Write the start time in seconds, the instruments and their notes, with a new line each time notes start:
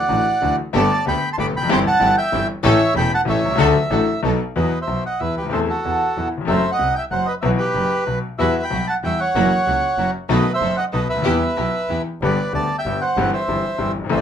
Already playing: bandoneon D5 F#5
0.08 grand piano A1 A2 E3 A3 D4 F#4, double bass A1
0.42 grand piano D2 D3 E3 A3 D4 F#4, double bass D2
0.73 grand piano G1 G2 D3 A3 B3 G4, double bass G1, string section B3 G4 A4, bandoneon D5 A5
1.06 grand piano D2 D3 A3 B3 G4, double bass D2, string section B3 G4 A4, bandoneon G5 B5
1.33 bandoneon A5 C6
1.38 grand piano G1 G2 D3 A3 B3 G4, double bass G1, string section B3 G4 A4, bandoneon B5 D6
1.54 double bass F1, grand piano E2, bandoneon G5 B5
1.62 grand piano F2 F#2
1.69 grand piano G1 G2 E3 G3 C4 G4, double bass G1, string section C4 E4 G4, bandoneon C6
1.73 bandoneon G5
1.87 bandoneon F#5 A5
2.00 grand piano G1 G2 E3 G3 C4 G4, double bass G1, string section C4 E4 G4
2.18 bandoneon E5 G5
2.32 grand piano G1 G2 E3 G3 C4 G4, double bass G1, string section C4 E4 G4
2.63 grand piano A1 A2 E3 A3 C#4 G4, double bass A1, string section C#4 G4 A4, bandoneon C#5 E5
2.94 grand piano E1 E2 E3 A3 C#4 G4, double bass E1, string section C#4 G4 A4, bandoneon G5 B5
3.14 bandoneon F#5 A5
3.25 grand piano A1 A2 E3 A3 C#4 G4, double bass A1, string section C#4 G4 A4
3.30 bandoneon C#5 E5
3.44 grand piano B1, double bass C2
3.51 grand piano C2
3.55 grand piano C#2 D2 D3 F#3 A3 D4 A4, string section D4 F#4 A4
3.59 double bass D2
3.90 grand piano A1 A2 F#3 A3 D4 A4, double bass A1, string section D4 F#4 A4
4.23 grand piano B1 B2 F#3 B3 D#4 A4, double bass B1, string section B3 D#4 A4
4.56 grand piano E2 E3 F#3 B3 F#4, double bass E2, bandoneon B4 D#5
4.82 bandoneon C5 E5
4.88 grand piano B1 B2, double bass B1
5.06 bandoneon D#5 F#5
5.20 grand piano E2 E3, double bass E2, bandoneon B4 E5
5.37 double bass D2, bandoneon G4 B4
5.42 grand piano C#2 D2
5.50 grand piano D#2 E2 E3 A3 C4 A4, double bass E2, bandoneon A4 C5
5.69 bandoneon F#4 A4
5.85 grand piano E2 E3, double bass E2
6.17 grand piano E2 E3, double bass E2
6.38 grand piano D#2 E2
6.45 double bass F#1, grand piano F2 F#2 F#3 A3 C4 A4, bandoneon E5
6.50 bandoneon C5
6.72 bandoneon D#5 F#5
6.79 grand piano C2 C3, double bass C2
6.95 bandoneon E5 G5
7.11 double bass F#1, grand piano F#2 F#3, bandoneon C5 F#5
7.26 bandoneon B4 D#5
7.41 grand piano B1 B2 E3 F#3 B3 F#4, double bass B1, bandoneon B4 E5
7.58 bandoneon G4 B4
7.75 grand piano F#1 F#2, double bass F#1
8.07 grand piano B1 B2, double bass B1
8.38 grand piano E2 E3 G3 B3 F#4, double bass E2, string section G3 E4 F#4, bandoneon B4 E5
8.62 bandoneon G5 B5
8.71 grand piano B1 B2, double bass B1, string section G3 E4 F#4
8.87 bandoneon F#5 A5
9.03 grand piano E2 E3, double bass E2, string section G3 E4 F#4, bandoneon E5 G5
9.19 bandoneon C#5 F#5
9.35 double bass F#1, grand piano F#2 E3 F#3 A#3 C#4 F#4, string section A#3 E4 F#4
9.67 double bass C#2, grand piano C#2 C#3, string section A#3 E4 F#4
9.98 double bass F#1, grand piano F#2 F#3, string section A#3 E4 F#4
10.29 grand piano B1 B2 D#3 A3 B3 F#4, double bass B1, string section B3 D#4 A4, bandoneon B4 D#5
10.54 bandoneon C5 E5
10.60 double bass F#1, grand piano F#1 F#2, string section B3 D#4 A4
10.77 bandoneon D#5 F#5
10.92 double bass B1, grand piano B1 B2, string section B3 D#4 A4, bandoneon B4 D#5
11.09 double bass D2, bandoneon B4 E5
11.14 grand piano C#2 D2
11.22 grand piano D#2 E2 E3 G3 B3 G4, double bass E2, string section B3 E4 G4
11.56 grand piano B1 B2, double bass B1, string section B3 E4 G4
11.88 double bass E2, grand piano E2 E3, string section B3 E4 G4
12.22 double bass G1, grand piano G1 G2 D3 G3 B3 G4, bandoneon B4 D5
12.53 grand piano D2 D3 G3 B3 G4, double bass D2, bandoneon D5 A5
12.78 bandoneon E5 G5
12.86 double bass G1, grand piano G1 G2 D3 G3 B3 G4
13.01 bandoneon C5 F#5
13.17 double bass G1, grand piano G1 G2 E3 G3 C4 G4
13.33 bandoneon C5 E5
13.48 grand piano G1 G2 E3 G3 C4 G4, double bass G1
13.78 grand piano G1 G2 E3 G3 C4 G4, double bass G1
13.97 grand piano F#1, double bass G1
14.04 grand piano G1 G#1
14.10 grand piano A1 A2 E3 A3 C4 A4, double bass A1, bandoneon C5 E5
14.17 bandoneon D5